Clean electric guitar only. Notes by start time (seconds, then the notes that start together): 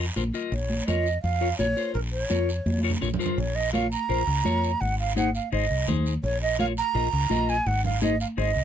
0.16 F4 A#4 C5
0.34 F4 A#4 D#5
0.87 F4 A#4 C#5
1.41 F4 A#4 C#5
1.59 F4 A#4 C#5
1.77 F4 A#4 C5
2.30 F4 A#4 C#5
2.83 F4 A#4 C#5
3.01 F4 A#4 C#5
3.19 F4 A#4 C5
3.73 F4 A#4 C#5
4.09 F4 A#4 C5
4.45 F4 A#4 C#5
5.16 D#4 G#4 C5
5.52 D#4 G#4 C5
5.88 D#4 G#4 C5
6.59 F4 A#4 C#5
6.95 F4 A#4 D#5
7.30 F4 A#4 D#5
8.02 D#4 G#4 C5
8.37 D#4 G#4 C5